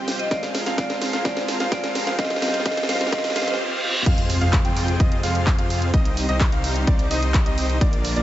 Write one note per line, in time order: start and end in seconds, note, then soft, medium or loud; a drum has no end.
0.00 0.29 G3 medium
0.00 0.28 C4 medium
0.00 0.29 C4 medium
0.00 0.29 D#4 medium
0.00 0.28 F4 medium
0.00 0.30 F4 medium
0.00 0.28 G4 medium
0.00 0.27 C5 medium
0.00 0.28 C5 medium
0.00 0.30 C5 medium
0.00 0.28 G5 medium
0.00 riser medium
0.08 snare medium
0.08 open hi-hat loud
0.19 0.29 D#5 medium
0.19 closed hi-hat soft
0.30 2.17 F3 medium
0.30 0.76 G#3 medium
0.30 0.76 C4 medium
0.30 0.64 C4 medium
0.30 2.17 D4 medium
0.30 0.64 F4 medium
0.30 0.76 F4 medium
0.30 0.64 G#4 medium
0.30 3.56 A#4 medium
0.30 0.64 C5 medium
0.30 0.77 C5 loud
0.30 0.42 D5 medium
0.30 0.64 F5 loud
0.30 kick loud
0.30 snare medium
0.30 closed hi-hat medium
0.43 snare medium
0.43 closed hi-hat soft
0.55 snare medium
0.55 open hi-hat loud
0.66 0.76 C4 loud
0.66 0.76 F4 medium
0.66 0.76 G#4 medium
0.66 0.76 C5 medium
0.66 0.76 F5 loud
0.66 snare medium
0.66 closed hi-hat soft
0.77 1.22 G#3 medium
0.77 1.23 C4 medium
0.77 1.10 C4 loud
0.77 1.10 F4 medium
0.77 1.23 F4 medium
0.77 1.24 C5 medium
0.77 0.89 D5 medium
0.77 1.10 F5 loud
0.77 kick loud
0.77 snare medium
0.77 closed hi-hat medium
0.90 snare medium
0.90 closed hi-hat soft
1.02 snare medium
1.02 open hi-hat loud
1.13 1.23 C4 medium
1.13 1.23 F4 medium
1.13 1.23 G#4 medium
1.13 1.23 C5 medium
1.13 1.23 F5 loud
1.13 snare medium
1.13 closed hi-hat soft
1.24 1.69 G#3 medium
1.24 1.70 C4 medium
1.24 1.57 C4 loud
1.24 1.57 F4 medium
1.24 1.70 F4 medium
1.24 1.57 G#4 medium
1.24 1.57 C5 medium
1.24 1.71 C5 loud
1.24 1.36 D5 medium
1.24 1.57 F5 loud
1.24 kick loud
1.24 snare loud
1.24 closed hi-hat medium
1.37 snare medium
1.37 closed hi-hat soft
1.48 snare medium
1.48 open hi-hat loud
1.60 1.70 C4 medium
1.60 1.70 F4 medium
1.60 1.70 G#4 medium
1.60 1.70 C5 medium
1.60 1.70 F5 medium
1.60 1.70 F5 loud
1.60 snare medium
1.60 closed hi-hat soft
1.71 2.16 G#3 medium
1.71 2.17 C4 medium
1.71 2.04 C4 medium
1.71 2.04 F4 medium
1.71 2.17 F4 medium
1.71 2.04 G#4 medium
1.71 2.04 C5 medium
1.71 2.17 C5 loud
1.71 1.83 D5 medium
1.71 2.04 F5 loud
1.71 kick loud
1.71 snare medium
1.71 closed hi-hat medium
1.84 snare medium
1.84 closed hi-hat soft
1.95 snare medium
1.95 open hi-hat loud
2.07 2.17 C4 medium
2.07 2.17 F4 medium
2.07 2.17 G#4 medium
2.07 2.17 C5 medium
2.07 2.17 F5 loud
2.07 2.17 F5 medium
2.07 snare medium
2.07 closed hi-hat soft
2.18 2.40 G3 medium
2.18 3.58 G3 medium
2.18 2.40 C4 medium
2.18 3.58 D#4 medium
2.18 2.40 F4 medium
2.18 2.41 C5 loud
2.18 2.30 D#5 medium
2.18 2.40 F5 loud
2.18 kick loud
2.18 snare loud
2.18 closed hi-hat medium
2.25 snare medium
2.30 snare medium
2.30 closed hi-hat soft
2.36 snare medium
2.41 2.63 G3 medium
2.41 2.64 C4 medium
2.41 2.64 C4 loud
2.41 2.64 F4 medium
2.41 2.64 G4 medium
2.41 2.64 C5 medium
2.41 2.64 C5 loud
2.41 2.53 D#5 medium
2.41 2.64 F5 loud
2.41 snare loud
2.41 open hi-hat loud
2.48 snare medium
2.54 snare medium
2.54 closed hi-hat soft
2.60 snare medium
2.64 2.87 G3 medium
2.64 2.87 C4 medium
2.64 2.87 F4 medium
2.64 2.88 C5 loud
2.64 2.76 D#5 medium
2.64 2.87 F5 loud
2.64 kick loud
2.64 snare loud
2.64 closed hi-hat medium
2.71 snare medium
2.77 snare medium
2.77 closed hi-hat soft
2.83 snare loud
2.88 3.10 G3 medium
2.88 3.10 C4 medium
2.88 3.10 F4 medium
2.88 3.11 F4 medium
2.88 3.10 G4 medium
2.88 3.11 C5 medium
2.88 3.11 C5 loud
2.88 3.00 D#5 medium
2.88 3.10 F5 loud
2.88 3.11 F5 loud
2.88 snare loud
2.88 open hi-hat loud
2.95 snare medium
3.01 snare loud
3.01 closed hi-hat soft
3.07 snare loud
3.11 3.33 G3 medium
3.11 3.34 C4 medium
3.11 3.34 C4 loud
3.11 3.34 F4 medium
3.11 3.34 C5 medium
3.11 3.35 C5 loud
3.11 3.23 D#5 medium
3.11 3.34 F5 loud
3.11 kick loud
3.11 snare loud
3.11 closed hi-hat medium
3.11 reverse cymbal medium
3.18 snare medium
3.24 snare medium
3.24 open hi-hat medium
3.30 snare medium
3.35 3.57 G3 loud
3.35 3.57 C4 medium
3.35 3.57 C4 loud
3.35 3.57 F4 medium
3.35 3.58 F4 medium
3.35 3.57 G4 loud
3.35 3.57 C5 loud
3.35 3.58 C5 loud
3.35 3.47 D#5 loud
3.35 3.57 F5 loud
3.35 snare loud
3.35 open hi-hat loud
3.42 snare loud
3.48 snare medium
3.48 closed hi-hat soft
3.53 snare medium
3.59 3.81 C4 loud
3.59 3.81 F4 medium
3.59 3.81 G4 medium
3.59 3.81 C5 medium
3.59 3.81 F5 loud
3.83 4.04 C4 loud
3.83 4.04 F4 medium
3.83 4.04 G4 medium
3.83 4.04 C5 medium
3.83 4.04 F5 loud
4.06 4.39 F2 medium
4.06 5.92 C3 medium
4.06 5.92 G#3 medium
4.06 4.39 C4 medium
4.06 5.92 F4 medium
4.06 4.39 F4 medium
4.06 4.39 G#4 medium
4.06 4.39 C5 medium
4.06 4.39 F5 loud
4.06 kick loud
4.06 closed hi-hat medium
4.06 crash loud
4.06 impact medium
4.18 closed hi-hat soft
4.30 open hi-hat loud
4.41 4.62 F2 loud
4.41 4.60 C4 loud
4.41 4.60 F4 medium
4.41 4.60 G#4 medium
4.41 4.60 C5 medium
4.41 4.60 F5 loud
4.41 closed hi-hat soft
4.53 kick loud
4.53 clap loud
4.53 closed hi-hat medium
4.65 4.98 F2 loud
4.65 4.97 C4 medium
4.65 4.97 F4 medium
4.65 4.97 G#4 medium
4.65 4.97 C5 medium
4.65 4.97 G5 medium
4.65 closed hi-hat soft
4.76 clap soft
4.76 open hi-hat loud
4.88 closed hi-hat soft
5.00 5.21 F2 loud
5.00 5.21 C4 loud
5.00 5.21 F4 medium
5.00 5.21 D#5 loud
5.00 kick loud
5.00 closed hi-hat medium
5.12 closed hi-hat soft
5.23 5.56 F2 loud
5.23 5.56 C4 loud
5.23 5.56 F4 medium
5.23 5.56 G#4 medium
5.23 5.56 C5 medium
5.23 5.56 F5 loud
5.23 open hi-hat loud
5.35 closed hi-hat soft
5.47 kick loud
5.47 clap loud
5.47 closed hi-hat medium
5.58 5.91 F2 loud
5.58 5.91 C4 loud
5.58 5.91 F4 medium
5.58 5.91 G#4 medium
5.58 5.91 C5 medium
5.58 5.91 F5 loud
5.58 closed hi-hat soft
5.70 open hi-hat loud
5.82 closed hi-hat soft
5.94 6.27 C2 medium
5.94 7.79 C3 medium
5.94 7.79 G3 medium
5.94 6.26 C4 medium
5.94 6.26 D#4 medium
5.94 7.79 D#4 medium
5.94 6.26 G4 medium
5.94 6.26 D#5 loud
5.94 kick loud
5.94 closed hi-hat medium
6.05 closed hi-hat soft
6.17 open hi-hat loud
6.29 6.50 C2 medium
6.29 6.48 C4 loud
6.29 6.48 D#4 medium
6.29 6.48 G4 medium
6.29 6.48 C5 medium
6.29 6.48 D#5 loud
6.29 closed hi-hat soft
6.41 kick loud
6.41 clap loud
6.41 closed hi-hat medium
6.52 6.85 C2 loud
6.52 6.85 C4 medium
6.52 6.85 D#4 medium
6.52 6.85 G4 medium
6.52 6.85 C5 medium
6.52 6.85 F5 medium
6.52 closed hi-hat soft
6.64 open hi-hat loud
6.76 closed hi-hat soft
6.87 7.09 C2 loud
6.87 7.08 C4 loud
6.87 7.08 D#4 medium
6.87 7.08 G4 medium
6.87 7.08 C5 medium
6.87 7.08 D5 loud
6.87 kick loud
6.87 closed hi-hat medium
6.99 closed hi-hat soft
7.11 7.44 C2 loud
7.11 7.43 C4 loud
7.11 7.43 D#4 medium
7.11 7.43 G4 medium
7.11 7.43 C5 loud
7.11 7.43 D#5 loud
7.11 open hi-hat loud
7.23 closed hi-hat soft
7.34 kick loud
7.34 clap loud
7.34 closed hi-hat medium
7.46 7.79 C2 medium
7.46 7.78 C4 loud
7.46 7.78 D#4 medium
7.46 7.78 G4 medium
7.46 7.78 C5 medium
7.46 7.78 D#5 loud
7.46 closed hi-hat soft
7.58 open hi-hat loud
7.70 closed hi-hat soft
7.81 8.14 A#1 medium
7.81 8.23 D3 medium
7.81 8.14 A#3 loud
7.81 8.23 A#3 medium
7.81 8.14 D4 medium
7.81 8.23 F4 medium
7.81 8.13 D5 loud
7.81 8.14 D5 loud
7.81 kick loud
7.81 closed hi-hat medium
7.93 closed hi-hat soft
8.05 open hi-hat loud
8.16 8.23 A#1 loud
8.16 8.23 A#3 medium
8.16 8.23 D4 medium
8.16 8.23 F4 medium
8.16 8.23 A#4 medium
8.16 8.23 D5 loud
8.16 closed hi-hat soft